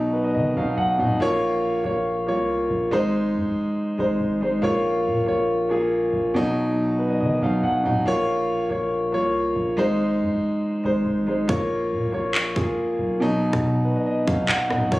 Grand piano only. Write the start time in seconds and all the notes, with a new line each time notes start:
Already playing: B2 F#3 D#4
0.13 B4
0.24 D#5
0.34 D#5
0.56 B2 F#3 D#4 F5
0.77 F#5
0.98 B2 F#3 D#4
1.20 A#3 F4 C#5
1.84 A#3 F4 C#5
2.27 A#3 F4 C#5
2.91 G#3 D#4 C5
3.98 G#3 D#4 C5
4.41 G#3 D#4 C5
4.62 A#3 F4 C#5
5.26 A#3 F4 C#5
5.69 A#3 F4 G#4
6.34 B2 F#3 D#4
6.99 B4
7.10 D#5
7.20 D#5
7.42 B2 F#3 D#4 F5
7.63 F#5
7.84 B2 F#3 D#4
8.06 A#3 F4 C#5
8.70 A#3 F4 C#5
9.12 A#3 F4 C#5
9.77 G#3 D#4 C5
10.84 G#3 D#4 C5
11.27 G#3 D#4 C5
11.48 A#3 F4 C#5
12.12 A#3 F4 C#5
12.55 A#3 F4 G#4
13.20 B2 F#3 D#4
13.85 B4
13.96 D#5
14.06 D#5
14.27 B2 F#3 D#4 F5
14.49 F#5
14.69 B2 F#3 D#4
14.91 A#3 F4 C#5